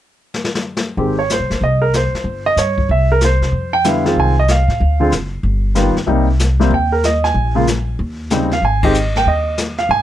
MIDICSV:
0, 0, Header, 1, 5, 480
1, 0, Start_track
1, 0, Key_signature, -4, "major"
1, 0, Tempo, 318640
1, 1464, Time_signature, 4, 2, 24, 8
1, 15096, End_track
2, 0, Start_track
2, 0, Title_t, "Grand piano"
2, 0, Program_c, 0, 0
2, 1467, Note_on_c, 0, 60, 45
2, 1471, Note_on_c, 0, 51, 45
2, 1475, Note_on_c, 0, 56, 43
2, 1475, Note_on_c, 0, 67, 52
2, 1742, Note_off_c, 0, 60, 0
2, 1744, Note_off_c, 0, 51, 0
2, 1746, Note_off_c, 0, 56, 0
2, 1746, Note_off_c, 0, 67, 0
2, 1788, Note_on_c, 0, 73, 65
2, 1949, Note_off_c, 0, 73, 0
2, 1988, Note_on_c, 0, 72, 63
2, 2416, Note_off_c, 0, 72, 0
2, 2464, Note_on_c, 0, 75, 72
2, 2736, Note_on_c, 0, 70, 70
2, 2743, Note_off_c, 0, 75, 0
2, 2903, Note_off_c, 0, 70, 0
2, 2952, Note_on_c, 0, 72, 61
2, 3663, Note_off_c, 0, 72, 0
2, 3710, Note_on_c, 0, 75, 90
2, 3871, Note_off_c, 0, 75, 0
2, 3896, Note_on_c, 0, 73, 67
2, 4329, Note_off_c, 0, 73, 0
2, 4386, Note_on_c, 0, 76, 68
2, 4664, Note_off_c, 0, 76, 0
2, 4695, Note_on_c, 0, 70, 76
2, 4844, Note_off_c, 0, 70, 0
2, 4886, Note_on_c, 0, 72, 63
2, 5590, Note_off_c, 0, 72, 0
2, 5622, Note_on_c, 0, 79, 90
2, 5787, Note_off_c, 0, 79, 0
2, 5796, Note_on_c, 0, 55, 48
2, 5801, Note_on_c, 0, 50, 49
2, 5809, Note_on_c, 0, 59, 50
2, 5810, Note_on_c, 0, 64, 58
2, 5827, Note_on_c, 0, 77, 59
2, 6067, Note_off_c, 0, 55, 0
2, 6070, Note_off_c, 0, 50, 0
2, 6074, Note_off_c, 0, 59, 0
2, 6074, Note_off_c, 0, 64, 0
2, 6101, Note_on_c, 0, 51, 50
2, 6104, Note_on_c, 0, 56, 47
2, 6110, Note_on_c, 0, 65, 59
2, 6111, Note_on_c, 0, 60, 49
2, 6255, Note_off_c, 0, 77, 0
2, 6322, Note_on_c, 0, 80, 78
2, 6516, Note_off_c, 0, 51, 0
2, 6518, Note_off_c, 0, 56, 0
2, 6520, Note_off_c, 0, 65, 0
2, 6521, Note_off_c, 0, 60, 0
2, 6592, Note_off_c, 0, 80, 0
2, 6620, Note_on_c, 0, 75, 77
2, 6766, Note_off_c, 0, 75, 0
2, 6794, Note_on_c, 0, 77, 66
2, 7503, Note_off_c, 0, 77, 0
2, 7532, Note_on_c, 0, 50, 59
2, 7534, Note_on_c, 0, 56, 54
2, 7542, Note_on_c, 0, 60, 53
2, 7545, Note_on_c, 0, 65, 65
2, 7689, Note_off_c, 0, 50, 0
2, 7690, Note_off_c, 0, 56, 0
2, 7694, Note_off_c, 0, 60, 0
2, 7695, Note_off_c, 0, 65, 0
2, 8663, Note_on_c, 0, 55, 50
2, 8666, Note_on_c, 0, 51, 53
2, 8669, Note_on_c, 0, 59, 47
2, 8674, Note_on_c, 0, 65, 55
2, 8939, Note_off_c, 0, 55, 0
2, 8941, Note_off_c, 0, 51, 0
2, 8943, Note_off_c, 0, 59, 0
2, 8945, Note_off_c, 0, 65, 0
2, 9138, Note_on_c, 0, 48, 57
2, 9149, Note_on_c, 0, 55, 52
2, 9150, Note_on_c, 0, 58, 47
2, 9158, Note_on_c, 0, 63, 56
2, 9417, Note_off_c, 0, 48, 0
2, 9422, Note_off_c, 0, 55, 0
2, 9422, Note_off_c, 0, 58, 0
2, 9426, Note_off_c, 0, 63, 0
2, 9937, Note_on_c, 0, 48, 56
2, 9937, Note_on_c, 0, 55, 52
2, 9946, Note_on_c, 0, 58, 55
2, 9947, Note_on_c, 0, 60, 60
2, 10090, Note_off_c, 0, 48, 0
2, 10090, Note_off_c, 0, 55, 0
2, 10095, Note_off_c, 0, 58, 0
2, 10095, Note_off_c, 0, 60, 0
2, 10153, Note_on_c, 0, 79, 68
2, 10426, Note_off_c, 0, 79, 0
2, 10430, Note_on_c, 0, 70, 59
2, 10589, Note_off_c, 0, 70, 0
2, 10623, Note_on_c, 0, 75, 71
2, 10900, Note_off_c, 0, 75, 0
2, 10908, Note_on_c, 0, 80, 80
2, 11377, Note_on_c, 0, 49, 59
2, 11380, Note_on_c, 0, 56, 52
2, 11387, Note_on_c, 0, 65, 60
2, 11389, Note_on_c, 0, 58, 51
2, 11529, Note_off_c, 0, 49, 0
2, 11530, Note_off_c, 0, 56, 0
2, 11534, Note_off_c, 0, 65, 0
2, 11535, Note_off_c, 0, 58, 0
2, 11970, Note_off_c, 0, 80, 0
2, 12517, Note_on_c, 0, 55, 44
2, 12522, Note_on_c, 0, 60, 48
2, 12525, Note_on_c, 0, 49, 50
2, 12536, Note_on_c, 0, 63, 54
2, 12784, Note_off_c, 0, 55, 0
2, 12787, Note_off_c, 0, 60, 0
2, 12788, Note_off_c, 0, 49, 0
2, 12793, Note_off_c, 0, 63, 0
2, 12849, Note_on_c, 0, 77, 75
2, 12997, Note_off_c, 0, 77, 0
2, 13026, Note_on_c, 0, 80, 76
2, 13300, Note_off_c, 0, 80, 0
2, 13305, Note_on_c, 0, 56, 57
2, 13310, Note_on_c, 0, 51, 62
2, 13320, Note_on_c, 0, 67, 69
2, 13322, Note_on_c, 0, 60, 57
2, 13326, Note_on_c, 0, 75, 60
2, 13452, Note_off_c, 0, 56, 0
2, 13454, Note_off_c, 0, 51, 0
2, 13459, Note_off_c, 0, 67, 0
2, 13460, Note_off_c, 0, 60, 0
2, 13753, Note_off_c, 0, 75, 0
2, 13812, Note_on_c, 0, 79, 83
2, 13958, Note_off_c, 0, 79, 0
2, 13978, Note_on_c, 0, 75, 67
2, 14406, Note_off_c, 0, 75, 0
2, 14741, Note_on_c, 0, 77, 77
2, 14902, Note_off_c, 0, 77, 0
2, 14925, Note_on_c, 0, 80, 93
2, 15096, Note_off_c, 0, 80, 0
2, 15096, End_track
3, 0, Start_track
3, 0, Title_t, "Upright bass"
3, 0, Program_c, 1, 32
3, 1464, Note_on_c, 1, 32, 73
3, 2061, Note_off_c, 1, 32, 0
3, 2096, Note_on_c, 1, 36, 51
3, 2250, Note_off_c, 1, 36, 0
3, 2265, Note_on_c, 1, 33, 54
3, 2415, Note_off_c, 1, 33, 0
3, 2423, Note_on_c, 1, 36, 76
3, 3157, Note_off_c, 1, 36, 0
3, 3374, Note_on_c, 1, 31, 76
3, 3827, Note_off_c, 1, 31, 0
3, 3861, Note_on_c, 1, 43, 65
3, 4311, Note_off_c, 1, 43, 0
3, 4355, Note_on_c, 1, 36, 73
3, 5083, Note_off_c, 1, 36, 0
3, 5141, Note_on_c, 1, 48, 59
3, 5288, Note_off_c, 1, 48, 0
3, 5297, Note_on_c, 1, 41, 69
3, 6214, Note_off_c, 1, 41, 0
3, 6270, Note_on_c, 1, 36, 75
3, 7000, Note_off_c, 1, 36, 0
3, 7049, Note_on_c, 1, 45, 64
3, 7213, Note_off_c, 1, 45, 0
3, 7236, Note_on_c, 1, 38, 78
3, 7678, Note_off_c, 1, 38, 0
3, 7725, Note_on_c, 1, 30, 70
3, 8162, Note_off_c, 1, 30, 0
3, 8184, Note_on_c, 1, 31, 80
3, 8915, Note_off_c, 1, 31, 0
3, 9144, Note_on_c, 1, 36, 78
3, 10055, Note_off_c, 1, 36, 0
3, 10099, Note_on_c, 1, 39, 78
3, 11012, Note_off_c, 1, 39, 0
3, 11060, Note_on_c, 1, 34, 76
3, 11972, Note_off_c, 1, 34, 0
3, 12036, Note_on_c, 1, 39, 78
3, 12940, Note_off_c, 1, 39, 0
3, 12981, Note_on_c, 1, 32, 77
3, 13892, Note_off_c, 1, 32, 0
3, 13944, Note_on_c, 1, 39, 78
3, 14854, Note_off_c, 1, 39, 0
3, 14898, Note_on_c, 1, 32, 74
3, 15096, Note_off_c, 1, 32, 0
3, 15096, End_track
4, 0, Start_track
4, 0, Title_t, "Muted upright bass strokes"
4, 3208, Note_on_c, 9, 29, 31
4, 3359, Note_off_c, 9, 29, 0
4, 8970, Note_on_c, 9, 29, 33
4, 9121, Note_off_c, 9, 29, 0
4, 15096, End_track
5, 0, Start_track
5, 0, Title_t, "Drums"
5, 513, Note_on_c, 9, 38, 53
5, 664, Note_off_c, 9, 38, 0
5, 669, Note_on_c, 9, 38, 59
5, 820, Note_off_c, 9, 38, 0
5, 828, Note_on_c, 9, 38, 66
5, 978, Note_off_c, 9, 38, 0
5, 1155, Note_on_c, 9, 38, 74
5, 1306, Note_off_c, 9, 38, 0
5, 1471, Note_on_c, 9, 25, 42
5, 1951, Note_on_c, 9, 44, 54
5, 1957, Note_on_c, 9, 38, 45
5, 2102, Note_off_c, 9, 44, 0
5, 2108, Note_off_c, 9, 38, 0
5, 2265, Note_on_c, 9, 38, 33
5, 2416, Note_off_c, 9, 38, 0
5, 2436, Note_off_c, 9, 25, 0
5, 2436, Note_on_c, 9, 25, 38
5, 2915, Note_on_c, 9, 44, 48
5, 2921, Note_on_c, 9, 38, 53
5, 3065, Note_off_c, 9, 44, 0
5, 3071, Note_off_c, 9, 38, 0
5, 3233, Note_on_c, 9, 38, 34
5, 3384, Note_off_c, 9, 38, 0
5, 3406, Note_off_c, 9, 25, 0
5, 3406, Note_on_c, 9, 25, 42
5, 3874, Note_on_c, 9, 44, 53
5, 3880, Note_on_c, 9, 38, 49
5, 4025, Note_off_c, 9, 44, 0
5, 4031, Note_off_c, 9, 38, 0
5, 4184, Note_on_c, 9, 36, 54
5, 4335, Note_off_c, 9, 36, 0
5, 4367, Note_off_c, 9, 25, 0
5, 4367, Note_on_c, 9, 25, 41
5, 4832, Note_on_c, 9, 44, 49
5, 4838, Note_on_c, 9, 38, 49
5, 4982, Note_off_c, 9, 44, 0
5, 4988, Note_off_c, 9, 38, 0
5, 5153, Note_on_c, 9, 38, 33
5, 5304, Note_off_c, 9, 38, 0
5, 5330, Note_off_c, 9, 25, 0
5, 5330, Note_on_c, 9, 25, 41
5, 5788, Note_on_c, 9, 44, 52
5, 5794, Note_on_c, 9, 38, 46
5, 5938, Note_off_c, 9, 44, 0
5, 5944, Note_off_c, 9, 38, 0
5, 6109, Note_on_c, 9, 38, 35
5, 6260, Note_off_c, 9, 38, 0
5, 6282, Note_off_c, 9, 25, 0
5, 6282, Note_on_c, 9, 25, 39
5, 6750, Note_on_c, 9, 44, 55
5, 6756, Note_on_c, 9, 38, 51
5, 6901, Note_off_c, 9, 44, 0
5, 6907, Note_off_c, 9, 38, 0
5, 7071, Note_on_c, 9, 38, 32
5, 7221, Note_off_c, 9, 38, 0
5, 7238, Note_off_c, 9, 25, 0
5, 7238, Note_on_c, 9, 25, 42
5, 7711, Note_on_c, 9, 44, 45
5, 7717, Note_on_c, 9, 38, 45
5, 7861, Note_off_c, 9, 44, 0
5, 7867, Note_off_c, 9, 38, 0
5, 8198, Note_off_c, 9, 25, 0
5, 8198, Note_on_c, 9, 25, 35
5, 8665, Note_on_c, 9, 44, 50
5, 8671, Note_on_c, 9, 38, 47
5, 8815, Note_off_c, 9, 44, 0
5, 8821, Note_off_c, 9, 38, 0
5, 8985, Note_on_c, 9, 38, 32
5, 9136, Note_off_c, 9, 38, 0
5, 9159, Note_off_c, 9, 25, 0
5, 9159, Note_on_c, 9, 25, 46
5, 9631, Note_on_c, 9, 44, 54
5, 9637, Note_on_c, 9, 38, 49
5, 9782, Note_off_c, 9, 44, 0
5, 9788, Note_off_c, 9, 38, 0
5, 9952, Note_on_c, 9, 38, 33
5, 10103, Note_off_c, 9, 38, 0
5, 10122, Note_off_c, 9, 25, 0
5, 10122, Note_on_c, 9, 25, 37
5, 10595, Note_on_c, 9, 44, 53
5, 10601, Note_on_c, 9, 38, 52
5, 10745, Note_off_c, 9, 44, 0
5, 10751, Note_off_c, 9, 38, 0
5, 10911, Note_on_c, 9, 38, 34
5, 11062, Note_off_c, 9, 38, 0
5, 11082, Note_off_c, 9, 25, 0
5, 11082, Note_on_c, 9, 25, 44
5, 11558, Note_on_c, 9, 44, 56
5, 11564, Note_on_c, 9, 38, 51
5, 11709, Note_off_c, 9, 44, 0
5, 11715, Note_off_c, 9, 38, 0
5, 12035, Note_off_c, 9, 25, 0
5, 12035, Note_on_c, 9, 25, 39
5, 12506, Note_on_c, 9, 44, 47
5, 12512, Note_on_c, 9, 38, 51
5, 12656, Note_off_c, 9, 44, 0
5, 12663, Note_off_c, 9, 38, 0
5, 12823, Note_on_c, 9, 38, 33
5, 12974, Note_off_c, 9, 38, 0
5, 12999, Note_off_c, 9, 25, 0
5, 12999, Note_on_c, 9, 25, 40
5, 13299, Note_on_c, 9, 51, 65
5, 13302, Note_on_c, 9, 36, 68
5, 13450, Note_off_c, 9, 51, 0
5, 13452, Note_off_c, 9, 36, 0
5, 13470, Note_on_c, 9, 44, 49
5, 13621, Note_off_c, 9, 44, 0
5, 13791, Note_on_c, 9, 38, 33
5, 13942, Note_off_c, 9, 38, 0
5, 13957, Note_off_c, 9, 25, 0
5, 13957, Note_on_c, 9, 25, 39
5, 14424, Note_on_c, 9, 44, 60
5, 14430, Note_on_c, 9, 38, 50
5, 14575, Note_off_c, 9, 44, 0
5, 14581, Note_off_c, 9, 38, 0
5, 14733, Note_on_c, 9, 38, 33
5, 14883, Note_off_c, 9, 38, 0
5, 14903, Note_off_c, 9, 25, 0
5, 14903, Note_on_c, 9, 25, 44
5, 15096, Note_off_c, 9, 25, 0
5, 15096, End_track
0, 0, End_of_file